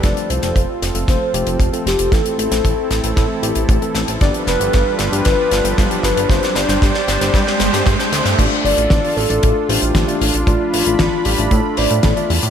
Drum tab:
CC |----------------|----------------|----------------|----------------|
HH |xxxxx-xxx-xxxxxx|xxxxx-xxx-xxxxxx|xxxxx-xxx-xxxxxx|xxxxx-xxx-xxxxxx|
SD |o--o--o-o-----o-|o--o--o-o-----o-|o-o-o-o-o-o-o-o-|oooooooooooooooo|
BD |o---o---o---o---|o---o---o---o---|o---o---o---o---|o---o---o---o---|

CC |x---------------|----------------|
HH |x-oxxooxx-oxxxox|x-oxx-oxx-oxxxox|
SD |----o-------o---|----o-------o---|
BD |o---o---o---o---|o---o---o---o---|